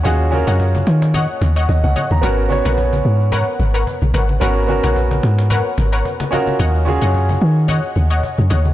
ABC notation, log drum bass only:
X:1
M:4/4
L:1/16
Q:"Swing 16ths" 1/4=110
K:Ebm
V:1 name="Log drum bass" clef=bass
E,,3 G,,3 E,3 z E,,2 E,, D,, z E,, | A,,,3 B,,,3 A,,3 z A,,,2 z B,,, A,,,2 | A,,,3 B,,,3 A,,3 z A,,,2 z4 | E,,3 G,,3 E,3 z E,,2 z G,, E,,2 |]